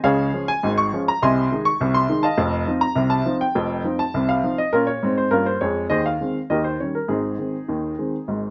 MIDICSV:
0, 0, Header, 1, 2, 480
1, 0, Start_track
1, 0, Key_signature, -4, "major"
1, 0, Tempo, 588235
1, 31, Time_signature, 2, 2, 24, 8
1, 6938, End_track
2, 0, Start_track
2, 0, Title_t, "Upright piano"
2, 0, Program_c, 0, 0
2, 29, Note_on_c, 0, 37, 76
2, 30, Note_on_c, 0, 77, 99
2, 32, Note_on_c, 0, 49, 88
2, 40, Note_on_c, 0, 68, 79
2, 40, Note_on_c, 0, 73, 81
2, 234, Note_off_c, 0, 37, 0
2, 235, Note_off_c, 0, 49, 0
2, 273, Note_on_c, 0, 53, 49
2, 276, Note_on_c, 0, 56, 46
2, 283, Note_on_c, 0, 61, 54
2, 370, Note_off_c, 0, 68, 0
2, 370, Note_off_c, 0, 73, 0
2, 372, Note_off_c, 0, 77, 0
2, 394, Note_on_c, 0, 80, 97
2, 404, Note_off_c, 0, 53, 0
2, 407, Note_off_c, 0, 56, 0
2, 411, Note_off_c, 0, 61, 0
2, 516, Note_on_c, 0, 44, 75
2, 519, Note_on_c, 0, 32, 80
2, 584, Note_off_c, 0, 80, 0
2, 633, Note_on_c, 0, 85, 95
2, 718, Note_off_c, 0, 44, 0
2, 719, Note_off_c, 0, 32, 0
2, 761, Note_on_c, 0, 53, 53
2, 766, Note_on_c, 0, 56, 48
2, 766, Note_on_c, 0, 61, 59
2, 823, Note_off_c, 0, 85, 0
2, 884, Note_on_c, 0, 82, 90
2, 890, Note_off_c, 0, 53, 0
2, 893, Note_off_c, 0, 56, 0
2, 893, Note_off_c, 0, 61, 0
2, 996, Note_off_c, 0, 82, 0
2, 998, Note_on_c, 0, 48, 85
2, 999, Note_on_c, 0, 36, 79
2, 1001, Note_on_c, 0, 84, 92
2, 1008, Note_on_c, 0, 80, 69
2, 1011, Note_on_c, 0, 75, 67
2, 1197, Note_off_c, 0, 48, 0
2, 1198, Note_off_c, 0, 36, 0
2, 1236, Note_on_c, 0, 51, 48
2, 1243, Note_on_c, 0, 56, 53
2, 1245, Note_on_c, 0, 63, 57
2, 1283, Note_off_c, 0, 84, 0
2, 1332, Note_off_c, 0, 80, 0
2, 1334, Note_off_c, 0, 75, 0
2, 1349, Note_on_c, 0, 85, 96
2, 1365, Note_off_c, 0, 51, 0
2, 1370, Note_off_c, 0, 56, 0
2, 1372, Note_off_c, 0, 63, 0
2, 1472, Note_on_c, 0, 48, 73
2, 1475, Note_on_c, 0, 36, 80
2, 1576, Note_off_c, 0, 85, 0
2, 1587, Note_on_c, 0, 84, 99
2, 1673, Note_off_c, 0, 48, 0
2, 1675, Note_off_c, 0, 36, 0
2, 1706, Note_on_c, 0, 51, 48
2, 1710, Note_on_c, 0, 63, 52
2, 1711, Note_on_c, 0, 56, 46
2, 1814, Note_off_c, 0, 84, 0
2, 1819, Note_on_c, 0, 81, 92
2, 1829, Note_on_c, 0, 75, 67
2, 1829, Note_on_c, 0, 77, 72
2, 1837, Note_off_c, 0, 51, 0
2, 1841, Note_off_c, 0, 56, 0
2, 1841, Note_off_c, 0, 63, 0
2, 1938, Note_on_c, 0, 41, 84
2, 1941, Note_on_c, 0, 29, 73
2, 2144, Note_off_c, 0, 41, 0
2, 2146, Note_off_c, 0, 29, 0
2, 2180, Note_on_c, 0, 53, 51
2, 2184, Note_on_c, 0, 60, 55
2, 2187, Note_on_c, 0, 63, 51
2, 2204, Note_off_c, 0, 81, 0
2, 2273, Note_off_c, 0, 75, 0
2, 2273, Note_off_c, 0, 77, 0
2, 2294, Note_on_c, 0, 82, 92
2, 2313, Note_off_c, 0, 53, 0
2, 2316, Note_off_c, 0, 60, 0
2, 2318, Note_off_c, 0, 63, 0
2, 2411, Note_on_c, 0, 48, 78
2, 2413, Note_on_c, 0, 36, 73
2, 2526, Note_off_c, 0, 82, 0
2, 2529, Note_on_c, 0, 81, 90
2, 2619, Note_off_c, 0, 48, 0
2, 2621, Note_off_c, 0, 36, 0
2, 2656, Note_on_c, 0, 53, 50
2, 2657, Note_on_c, 0, 60, 47
2, 2662, Note_on_c, 0, 63, 52
2, 2726, Note_off_c, 0, 81, 0
2, 2782, Note_on_c, 0, 79, 86
2, 2790, Note_off_c, 0, 53, 0
2, 2790, Note_off_c, 0, 60, 0
2, 2793, Note_off_c, 0, 63, 0
2, 2899, Note_on_c, 0, 29, 72
2, 2900, Note_on_c, 0, 41, 81
2, 3104, Note_off_c, 0, 29, 0
2, 3104, Note_off_c, 0, 41, 0
2, 3136, Note_on_c, 0, 53, 44
2, 3138, Note_on_c, 0, 60, 45
2, 3144, Note_on_c, 0, 63, 55
2, 3237, Note_off_c, 0, 79, 0
2, 3257, Note_on_c, 0, 81, 83
2, 3269, Note_off_c, 0, 53, 0
2, 3271, Note_off_c, 0, 60, 0
2, 3275, Note_off_c, 0, 63, 0
2, 3381, Note_on_c, 0, 36, 69
2, 3382, Note_on_c, 0, 48, 73
2, 3486, Note_off_c, 0, 81, 0
2, 3499, Note_on_c, 0, 77, 89
2, 3584, Note_off_c, 0, 36, 0
2, 3585, Note_off_c, 0, 48, 0
2, 3618, Note_on_c, 0, 53, 49
2, 3619, Note_on_c, 0, 60, 47
2, 3624, Note_on_c, 0, 63, 46
2, 3727, Note_off_c, 0, 77, 0
2, 3740, Note_on_c, 0, 75, 77
2, 3750, Note_off_c, 0, 53, 0
2, 3751, Note_off_c, 0, 60, 0
2, 3755, Note_off_c, 0, 63, 0
2, 3857, Note_on_c, 0, 70, 85
2, 3858, Note_on_c, 0, 46, 68
2, 3859, Note_off_c, 0, 75, 0
2, 3866, Note_on_c, 0, 65, 65
2, 3870, Note_on_c, 0, 61, 70
2, 3973, Note_on_c, 0, 73, 79
2, 3974, Note_off_c, 0, 65, 0
2, 3976, Note_off_c, 0, 61, 0
2, 3978, Note_off_c, 0, 70, 0
2, 4050, Note_off_c, 0, 46, 0
2, 4103, Note_on_c, 0, 44, 67
2, 4114, Note_on_c, 0, 60, 69
2, 4203, Note_off_c, 0, 73, 0
2, 4223, Note_on_c, 0, 72, 71
2, 4292, Note_off_c, 0, 44, 0
2, 4299, Note_off_c, 0, 60, 0
2, 4332, Note_on_c, 0, 43, 68
2, 4332, Note_on_c, 0, 70, 81
2, 4340, Note_off_c, 0, 72, 0
2, 4340, Note_on_c, 0, 61, 58
2, 4342, Note_on_c, 0, 65, 59
2, 4347, Note_on_c, 0, 58, 66
2, 4450, Note_off_c, 0, 61, 0
2, 4451, Note_off_c, 0, 65, 0
2, 4454, Note_off_c, 0, 70, 0
2, 4457, Note_on_c, 0, 72, 71
2, 4526, Note_off_c, 0, 43, 0
2, 4535, Note_off_c, 0, 58, 0
2, 4577, Note_off_c, 0, 72, 0
2, 4577, Note_on_c, 0, 73, 75
2, 4580, Note_on_c, 0, 41, 62
2, 4595, Note_on_c, 0, 56, 68
2, 4769, Note_off_c, 0, 73, 0
2, 4771, Note_off_c, 0, 41, 0
2, 4780, Note_off_c, 0, 56, 0
2, 4811, Note_on_c, 0, 75, 86
2, 4813, Note_on_c, 0, 51, 61
2, 4815, Note_on_c, 0, 39, 69
2, 4819, Note_on_c, 0, 68, 64
2, 4819, Note_on_c, 0, 72, 64
2, 4930, Note_off_c, 0, 68, 0
2, 4930, Note_off_c, 0, 72, 0
2, 4934, Note_off_c, 0, 75, 0
2, 4942, Note_on_c, 0, 77, 76
2, 5019, Note_off_c, 0, 51, 0
2, 5020, Note_off_c, 0, 39, 0
2, 5067, Note_on_c, 0, 51, 36
2, 5067, Note_on_c, 0, 56, 41
2, 5072, Note_on_c, 0, 60, 39
2, 5197, Note_off_c, 0, 51, 0
2, 5197, Note_off_c, 0, 56, 0
2, 5201, Note_off_c, 0, 60, 0
2, 5229, Note_off_c, 0, 77, 0
2, 5304, Note_on_c, 0, 39, 66
2, 5304, Note_on_c, 0, 75, 69
2, 5305, Note_on_c, 0, 51, 60
2, 5312, Note_on_c, 0, 67, 56
2, 5315, Note_on_c, 0, 70, 57
2, 5418, Note_off_c, 0, 67, 0
2, 5419, Note_off_c, 0, 70, 0
2, 5421, Note_on_c, 0, 72, 63
2, 5422, Note_off_c, 0, 75, 0
2, 5507, Note_off_c, 0, 39, 0
2, 5508, Note_off_c, 0, 51, 0
2, 5541, Note_off_c, 0, 72, 0
2, 5551, Note_on_c, 0, 51, 37
2, 5551, Note_on_c, 0, 73, 55
2, 5558, Note_on_c, 0, 55, 35
2, 5559, Note_on_c, 0, 61, 39
2, 5667, Note_off_c, 0, 73, 0
2, 5671, Note_on_c, 0, 70, 57
2, 5681, Note_off_c, 0, 51, 0
2, 5686, Note_off_c, 0, 55, 0
2, 5687, Note_off_c, 0, 61, 0
2, 5780, Note_on_c, 0, 44, 64
2, 5782, Note_on_c, 0, 68, 60
2, 5783, Note_on_c, 0, 32, 52
2, 5787, Note_off_c, 0, 70, 0
2, 5793, Note_on_c, 0, 63, 48
2, 5795, Note_on_c, 0, 60, 47
2, 5988, Note_off_c, 0, 44, 0
2, 5989, Note_off_c, 0, 32, 0
2, 6020, Note_off_c, 0, 60, 0
2, 6026, Note_on_c, 0, 56, 34
2, 6027, Note_on_c, 0, 51, 34
2, 6032, Note_on_c, 0, 60, 38
2, 6160, Note_off_c, 0, 51, 0
2, 6160, Note_off_c, 0, 56, 0
2, 6164, Note_off_c, 0, 60, 0
2, 6271, Note_on_c, 0, 39, 54
2, 6271, Note_on_c, 0, 51, 53
2, 6476, Note_off_c, 0, 39, 0
2, 6476, Note_off_c, 0, 51, 0
2, 6518, Note_on_c, 0, 51, 38
2, 6518, Note_on_c, 0, 56, 37
2, 6520, Note_on_c, 0, 60, 37
2, 6649, Note_off_c, 0, 51, 0
2, 6650, Note_off_c, 0, 56, 0
2, 6651, Note_off_c, 0, 60, 0
2, 6757, Note_on_c, 0, 32, 53
2, 6759, Note_on_c, 0, 44, 59
2, 6938, Note_off_c, 0, 32, 0
2, 6938, Note_off_c, 0, 44, 0
2, 6938, Note_off_c, 0, 63, 0
2, 6938, Note_off_c, 0, 68, 0
2, 6938, End_track
0, 0, End_of_file